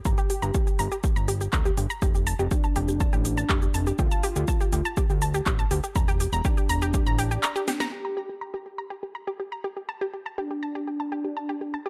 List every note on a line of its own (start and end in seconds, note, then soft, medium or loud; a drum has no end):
0.05 0.15 G1 loud
0.05 0.94 G4 loud
0.05 0.14 A#5 loud
0.05 kick loud
0.05 shaker medium
0.18 0.23 G4 loud
0.18 shaker soft
0.30 0.35 G4 medium
0.30 open hi-hat medium
0.30 shaker medium
0.42 0.51 G1 loud
0.42 0.51 A#5 medium
0.42 shaker soft
0.54 0.60 G4 medium
0.54 kick loud
0.54 shaker medium
0.67 0.72 G4 medium
0.67 shaker soft
0.79 0.88 G1 loud
0.79 0.88 A#5 loud
0.79 open hi-hat medium
0.79 shaker soft
0.92 0.97 G4 medium
0.92 shaker soft
1.04 1.09 G4 medium
1.04 kick loud
1.04 shaker medium
1.16 1.48 G1 medium
1.16 1.24 A#5 loud
1.16 shaker soft
1.28 1.33 G4 loud
1.28 open hi-hat loud
1.28 shaker medium
1.41 1.46 G4 medium
1.41 shaker soft
1.53 1.71 D2 medium
1.53 1.61 A#5 loud
1.53 kick loud
1.53 clap loud
1.53 shaker medium
1.65 1.70 G4 loud
1.65 shaker soft
1.77 1.87 G1 medium
1.77 1.83 G4 medium
1.77 open hi-hat loud
1.77 shaker soft
1.90 1.98 A#5 loud
1.90 shaker soft
2.02 2.34 F1 medium
2.02 2.07 G4 medium
2.02 kick loud
2.02 shaker medium
2.15 2.19 G4 medium
2.15 shaker soft
2.27 2.35 A5 loud
2.27 open hi-hat loud
2.27 shaker medium
2.39 2.48 F1 loud
2.39 2.44 G4 loud
2.39 shaker soft
2.51 3.89 D4 loud
2.51 2.56 G4 medium
2.51 kick loud
2.51 shaker medium
2.64 2.72 A5 medium
2.64 shaker soft
2.76 3.08 F1 medium
2.76 2.81 G4 loud
2.76 open hi-hat medium
2.76 shaker medium
2.88 2.93 G4 medium
2.88 shaker soft
3.00 3.09 A5 loud
3.00 kick loud
3.00 shaker medium
3.13 3.44 A1 loud
3.13 3.18 G4 medium
3.13 shaker soft
3.25 3.30 G4 medium
3.25 open hi-hat loud
3.25 shaker medium
3.37 3.46 A5 loud
3.37 shaker soft
3.50 3.68 F1 medium
3.50 3.55 G4 loud
3.50 kick loud
3.50 clap loud
3.50 shaker medium
3.62 3.67 G4 medium
3.62 shaker soft
3.74 3.92 F1 medium
3.74 3.83 A5 loud
3.74 open hi-hat loud
3.74 shaker medium
3.87 3.92 G4 loud
3.87 shaker soft
3.99 4.08 D2 loud
3.99 4.87 F4 loud
3.99 4.04 G4 medium
3.99 kick loud
3.99 shaker medium
4.11 4.19 A5 loud
4.11 shaker soft
4.23 4.28 G4 loud
4.23 open hi-hat medium
4.23 shaker medium
4.36 4.45 D2 loud
4.36 4.41 G4 medium
4.36 shaker soft
4.48 4.56 A5 loud
4.48 kick loud
4.48 shaker medium
4.61 4.65 G4 loud
4.61 shaker soft
4.72 4.82 D2 loud
4.72 4.78 G4 medium
4.72 open hi-hat medium
4.72 shaker medium
4.85 4.93 A5 loud
4.85 shaker soft
4.97 5.02 G4 loud
4.97 kick loud
4.97 shaker medium
5.10 5.41 D2 medium
5.10 5.15 G4 medium
5.10 shaker soft
5.22 5.30 A5 loud
5.22 open hi-hat loud
5.22 shaker medium
5.34 5.39 G4 loud
5.34 shaker soft
5.46 5.65 A1 medium
5.46 5.51 G4 medium
5.46 kick loud
5.46 clap loud
5.46 shaker medium
5.59 5.67 A5 loud
5.59 shaker soft
5.71 5.80 D2 medium
5.71 5.76 G4 loud
5.71 open hi-hat medium
5.71 shaker medium
5.84 5.88 G4 medium
5.84 shaker soft
5.96 6.27 E1 medium
5.96 6.04 A#5 loud
5.96 kick loud
5.96 shaker medium
6.08 6.13 G4 loud
6.08 shaker soft
6.20 6.25 G4 medium
6.20 open hi-hat loud
6.20 shaker medium
6.33 6.41 E1 loud
6.33 6.41 A#5 loud
6.33 shaker soft
6.45 7.83 D4 loud
6.45 6.50 G4 loud
6.45 kick loud
6.45 shaker medium
6.57 6.62 G4 medium
6.57 shaker soft
6.69 7.01 E1 medium
6.69 6.78 A#5 loud
6.69 open hi-hat medium
6.69 shaker medium
6.82 6.87 G4 loud
6.82 shaker soft
6.94 6.99 G4 medium
6.94 kick loud
6.94 shaker medium
7.06 7.38 A1 loud
7.06 7.15 A#5 medium
7.06 shaker soft
7.19 7.24 G4 loud
7.19 open hi-hat loud
7.19 shaker medium
7.31 7.36 G4 medium
7.31 shaker soft
7.43 7.52 A#5 loud
7.43 clap loud
7.43 shaker medium
7.56 7.61 G4 loud
7.56 shaker soft
7.68 7.73 G4 medium
7.68 snare medium
7.68 open hi-hat loud
7.68 shaker medium
7.80 7.88 A#5 loud
7.80 snare medium
7.80 shaker soft
7.92 8.81 G4 loud
7.92 7.97 G4 medium
8.05 8.13 A#5 medium
8.17 8.22 G4 medium
8.29 8.34 G4 medium
8.41 8.50 A#5 medium
8.54 8.59 G4 medium
8.66 8.71 G4 medium
8.78 8.87 A#5 medium
8.90 8.96 G4 medium
9.03 9.08 G4 medium
9.15 9.24 A#5 medium
9.28 9.32 G4 medium
9.40 9.45 G4 medium
9.52 9.60 A#5 loud
9.64 9.69 G4 medium
9.77 9.82 G4 medium
9.89 9.97 A5 medium
10.01 10.06 G4 loud
10.13 10.19 G4 medium
10.26 10.34 A5 medium
10.38 11.76 D4 loud
10.38 10.43 G4 medium
10.51 10.55 G4 medium
10.63 10.71 A5 loud
10.75 10.80 G4 medium
10.87 10.92 G4 medium
11.00 11.08 A5 medium
11.12 11.17 G4 medium
11.24 11.29 G4 medium
11.37 11.45 A5 medium
11.49 11.54 G4 loud
11.61 11.66 G4 medium
11.74 11.82 A5 medium
11.86 11.89 G4 medium
11.86 11.89 A4 medium